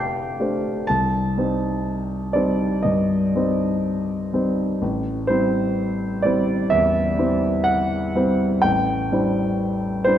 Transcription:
0.00 0.92 F1 soft
0.00 0.36 A3 soft
0.00 0.36 D4 soft
0.00 0.36 G4 soft
0.00 0.37 C5 soft
0.00 0.91 F5 medium
0.00 0.88 G5 medium
0.00 0.85 A5 soft
0.00 0.86 D6 soft
0.00 0.88 G6 soft
0.00 0.89 C7 soft
0.40 0.85 A3 soft
0.40 0.85 D4 soft
0.40 0.85 G4 soft
0.40 0.86 C5 soft
0.87 1.37 C2 soft
0.87 2.35 A5 medium
1.38 2.32 G3 soft
1.38 2.32 C4 soft
1.38 2.32 D#4 soft
1.38 2.32 C5 soft
2.33 2.81 G3 soft
2.33 2.81 C4 soft
2.33 2.82 D#4 soft
2.33 2.81 C5 soft
2.33 2.84 D5 medium
2.83 3.33 G2 soft
2.83 4.31 D#5 medium
3.35 4.29 G3 soft
3.35 4.29 C4 soft
3.35 4.29 D#4 soft
3.35 4.29 C5 soft
4.33 4.77 G3 soft
4.33 4.78 C4 soft
4.33 4.78 D#4 soft
4.33 4.78 C5 soft
4.82 5.28 A1 soft
5.27 6.20 G3 soft
5.27 6.20 C4 soft
5.27 6.20 E4 soft
5.27 6.23 C5 medium
6.22 6.67 G3 soft
6.22 6.67 C4 soft
6.22 6.67 E4 soft
6.22 6.68 C5 soft
6.22 6.70 D5 medium
6.70 7.17 E2 soft
6.70 7.66 E5 medium
7.18 8.12 G3 soft
7.18 8.12 C4 soft
7.18 8.12 E4 soft
7.18 8.12 C5 soft
7.64 8.63 F#5 medium
8.15 8.60 G3 soft
8.15 8.61 C4 soft
8.15 8.61 E4 soft
8.15 8.61 C5 soft
8.62 9.10 A1 soft
8.62 10.04 G5 medium
9.12 10.02 G3 soft
9.12 10.02 D4 soft
9.12 10.02 E4 soft
9.12 10.02 C5 soft
10.04 10.18 G3 soft
10.04 10.18 D4 soft
10.04 10.18 E4 soft
10.04 10.18 C5 medium

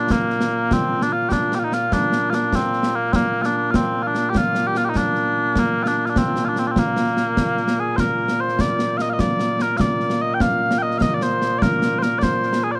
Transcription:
0.00 12.80 A#2 medium
0.00 0.11 A#3 medium
0.00 0.11 D4 loud
0.10 0.73 A#3 medium
0.10 concert bass drum medium
0.10 snare loud
0.30 snare soft
0.41 snare medium
0.71 1.02 C4 loud
0.71 concert bass drum medium
0.71 snare medium
1.02 1.13 D4 loud
1.02 snare medium
1.13 1.29 F4 medium
1.29 1.55 D4 medium
1.29 1.32 G4 medium
1.29 concert bass drum medium
1.29 snare medium
1.52 1.59 G4 medium
1.52 snare medium
1.59 1.64 F4 medium
1.64 1.74 D#4 medium
1.72 1.93 F4 medium
1.72 snare medium
1.92 2.30 D4 loud
1.92 concert bass drum medium
1.92 snare medium
2.12 snare medium
2.30 2.34 F4 medium
2.30 snare medium
2.34 2.55 D4 medium
2.52 2.95 C4 loud
2.52 concert bass drum medium
2.52 snare loud
2.73 snare soft
2.83 snare medium
2.95 3.12 A#3 medium
3.12 3.42 A#3 loud
3.12 3.16 C4 loud
3.12 concert bass drum medium
3.12 snare loud
3.42 3.56 D4 loud
3.42 3.46 F4 loud
3.42 snare medium
3.56 3.71 D4 medium
3.71 3.76 F4 medium
3.71 concert bass drum medium
3.71 snare loud
3.76 4.03 C4 medium
4.03 4.07 F4 medium
4.07 4.18 D4 medium
4.15 4.30 D4 loud
4.15 snare medium
4.30 4.37 G4 medium
4.35 4.67 F4 loud
4.35 concert bass drum medium
4.35 snare medium
4.55 snare medium
4.67 4.77 G4 loud
4.75 4.85 F4 loud
4.75 snare medium
4.85 4.89 G4 medium
4.89 4.97 D#4 medium
4.95 5.59 D4 loud
4.95 concert bass drum medium
4.95 snare medium
5.15 snare soft
5.56 5.83 A#3 loud
5.56 concert bass drum medium
5.56 snare medium
5.83 5.88 F4 loud
5.83 snare medium
5.88 5.97 D4 loud
5.97 6.06 D4 medium
6.06 6.17 D4 medium
6.06 6.10 F4 medium
6.06 snare soft
6.16 6.45 C4 medium
6.16 concert bass drum medium
6.16 snare loud
6.36 snare medium
6.45 6.59 D4 medium
6.45 6.49 F4 medium
6.56 6.67 C4 medium
6.56 snare medium
6.67 6.71 D4 medium
6.71 6.79 C4 medium
6.76 7.80 A#3 medium
6.76 concert bass drum medium
6.76 snare medium
6.96 snare medium
7.07 snare soft
7.17 snare medium
7.37 concert bass drum medium
7.37 snare loud
7.57 snare soft
7.68 snare medium
7.80 7.96 G#4 medium
7.96 8.40 A#4 medium
7.96 8.00 C5 medium
7.96 concert bass drum medium
7.96 snare loud
8.28 snare medium
8.40 8.61 C5 medium
8.49 snare soft
8.59 8.97 D5 medium
8.59 concert bass drum medium
8.59 snare loud
8.79 snare medium
8.97 9.01 F5 medium
8.97 snare medium
9.01 9.10 D#5 medium
9.10 9.21 D#5 medium
9.10 9.13 F5 medium
9.19 9.62 D5 loud
9.19 concert bass drum medium
9.19 snare loud
9.39 snare medium
9.59 9.77 A#4 loud
9.59 snare medium
9.77 10.22 D5 medium
9.77 9.81 F5 medium
9.77 concert bass drum medium
9.77 snare loud
10.00 snare soft
10.10 snare medium
10.22 10.34 D#5 medium
10.34 10.41 G5 medium
10.40 10.78 F5 loud
10.40 concert bass drum medium
10.40 snare loud
10.71 snare medium
10.78 10.82 G5 medium
10.82 10.98 D#5 medium
10.91 snare soft
10.98 11.14 D#5 loud
10.98 11.02 F5 loud
10.98 concert bass drum medium
10.98 snare loud
11.14 11.23 D5 medium
11.21 11.58 C5 loud
11.21 snare medium
11.42 snare medium
11.58 11.99 A#4 loud
11.58 11.62 D5 loud
11.58 concert bass drum medium
11.58 snare loud
11.82 snare medium
11.99 12.03 C5 loud
11.99 snare medium
12.03 12.19 A#4 loud
12.19 12.23 D5 loud
12.19 concert bass drum medium
12.19 snare loud
12.23 12.64 C5 loud
12.43 snare soft
12.53 snare medium
12.64 12.71 G#4 medium
12.71 12.75 D5 medium
12.75 12.80 C5 medium

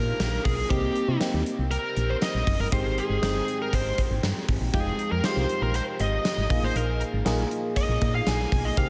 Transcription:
0.00 0.14 A#2 loud
0.00 0.69 F3 soft
0.00 0.70 A#3 medium
0.00 0.71 A#3 medium
0.00 0.72 D4 medium
0.00 0.71 D#4 medium
0.00 0.73 F4 soft
0.00 0.73 F4 medium
0.00 0.71 G4 medium
0.00 0.72 G#4 medium
0.00 0.45 A#4 medium
0.20 0.39 A#1 medium
0.20 snare loud
0.20 closed hi-hat medium
0.20 tambourine medium
0.45 0.64 B1 medium
0.45 0.70 G#4 medium
0.45 kick medium
0.45 open hi-hat medium
0.70 0.89 C2 loud
0.70 1.69 C3 medium
0.70 1.71 G3 medium
0.70 1.12 A#3 medium
0.70 1.12 C4 medium
0.70 1.72 C4 medium
0.70 1.12 D#4 medium
0.70 1.17 G4 medium
0.70 1.12 G4 medium
0.70 kick loud
0.70 closed hi-hat medium
0.96 closed hi-hat medium
1.08 1.18 C3 loud
1.20 2.03 A#3 medium
1.20 2.03 C4 medium
1.20 2.04 D#4 medium
1.20 2.04 G4 medium
1.20 snare loud
1.20 closed hi-hat medium
1.20 tambourine medium
1.34 1.43 D#2 medium
1.46 closed hi-hat medium
1.59 1.78 C2 medium
1.71 1.96 C3 medium
1.71 1.97 G3 medium
1.71 1.95 C4 medium
1.71 2.10 A#4 medium
1.71 closed hi-hat medium
1.96 2.16 A#1 loud
1.96 2.74 G3 soft
1.96 5.46 C4 medium
1.96 closed hi-hat medium
2.10 2.15 C5 medium
2.21 2.57 D#5 loud
2.21 snare loud
2.21 closed hi-hat medium
2.21 tambourine medium
2.34 2.44 A#1 medium
2.47 2.57 F#1 loud
2.47 kick medium
2.47 open hi-hat medium
2.59 2.69 G1 medium
2.59 2.66 A#4 medium
2.71 3.01 G#1 loud
2.71 3.71 G#2 medium
2.71 3.73 D#3 medium
2.71 3.13 G#3 medium
2.71 3.74 G#3 medium
2.71 3.13 C4 medium
2.71 3.14 D#4 medium
2.71 3.14 G4 medium
2.71 2.99 C5 loud
2.71 kick loud
2.71 closed hi-hat medium
2.98 3.57 G#4 medium
2.98 closed hi-hat medium
3.10 3.19 G#1 medium
3.22 3.41 G1 medium
3.22 4.05 G#3 medium
3.22 4.05 C4 medium
3.22 4.05 D#4 medium
3.22 4.06 G5 medium
3.22 snare loud
3.22 closed hi-hat medium
3.22 tambourine medium
3.48 closed hi-hat medium
3.62 3.74 A#4 medium
3.72 3.92 G#1 medium
3.72 3.98 G#2 soft
3.72 3.98 D#3 medium
3.72 3.96 G#3 medium
3.72 3.97 C5 medium
3.72 kick medium
3.72 closed hi-hat medium
3.97 4.03 G#1 soft
3.97 4.74 D#3 soft
3.97 4.75 G#3 soft
3.97 kick medium
3.97 closed hi-hat medium
4.11 4.20 G#1 medium
4.23 4.33 G2 medium
4.23 snare loud
4.23 closed hi-hat medium
4.23 tambourine medium
4.49 4.58 G#1 loud
4.49 kick medium
4.49 open hi-hat medium
4.61 4.71 A#1 medium
4.73 4.93 F1 loud
4.73 5.72 F2 medium
4.73 5.74 C3 medium
4.73 5.76 F3 medium
4.73 5.15 G#3 medium
4.73 5.15 D#4 medium
4.73 5.15 F4 medium
4.73 5.09 G#4 medium
4.73 5.15 G5 medium
4.73 kick loud
4.73 closed hi-hat medium
4.99 closed hi-hat medium
5.12 5.21 F2 medium
5.12 5.25 A#4 medium
5.23 6.07 G#3 medium
5.23 6.07 D#4 medium
5.23 6.07 F4 medium
5.23 6.07 G4 medium
5.23 5.62 C5 medium
5.23 snare loud
5.23 closed hi-hat medium
5.23 tambourine medium
5.37 5.46 C2 loud
5.49 closed hi-hat medium
5.62 5.81 A#1 medium
5.62 5.74 A#4 medium
5.74 5.99 F2 medium
5.74 6.00 C3 medium
5.74 5.98 F3 medium
5.74 5.83 C5 loud
5.74 closed hi-hat medium
5.99 6.19 G#1 medium
5.99 6.51 C3 soft
5.99 6.51 F3 medium
5.99 6.65 D#5 loud
5.99 closed hi-hat medium
6.25 snare loud
6.25 closed hi-hat medium
6.25 tambourine medium
6.38 6.47 G#1 medium
6.50 6.60 A#1 loud
6.50 7.75 A#2 medium
6.50 7.76 F3 medium
6.50 7.77 A#3 medium
6.50 7.12 A#3 medium
6.50 7.12 D#4 medium
6.50 7.13 F4 medium
6.50 7.13 G#4 medium
6.50 kick loud
6.50 open hi-hat medium
6.62 6.72 A1 medium
6.62 6.76 C5 medium
6.75 7.04 A#1 loud
6.75 7.01 A#4 medium
6.75 closed hi-hat medium
7.01 closed hi-hat medium
7.13 7.23 G#1 medium
7.25 7.45 A#1 loud
7.25 8.08 A#3 medium
7.25 8.09 D#4 medium
7.25 8.09 F4 medium
7.25 8.09 G#4 loud
7.25 snare loud
7.25 closed hi-hat medium
7.25 tambourine medium
7.51 closed hi-hat medium
7.76 8.01 A#2 medium
7.76 8.02 F3 medium
7.76 8.00 A#3 medium
7.76 8.15 D#5 medium
7.76 kick medium
7.76 closed hi-hat medium
7.89 7.98 A#1 medium
8.01 8.21 A#2 loud
8.01 8.77 F3 soft
8.01 8.79 A#3 medium
8.01 kick medium
8.01 closed hi-hat medium
8.15 8.28 F5 medium
8.26 8.46 A#1 loud
8.26 8.66 G#5 loud
8.26 snare loud
8.26 closed hi-hat medium
8.26 tambourine medium
8.52 8.71 B1 medium
8.52 kick loud
8.52 open hi-hat medium
8.65 8.78 D#5 medium
8.76 8.89 C2 loud
8.76 8.89 C3 medium
8.76 8.89 G3 medium
8.76 8.89 A#3 medium
8.76 8.89 C4 medium
8.76 8.89 D#4 medium
8.76 8.89 G4 medium
8.76 8.89 F5 medium
8.76 kick loud
8.76 closed hi-hat medium

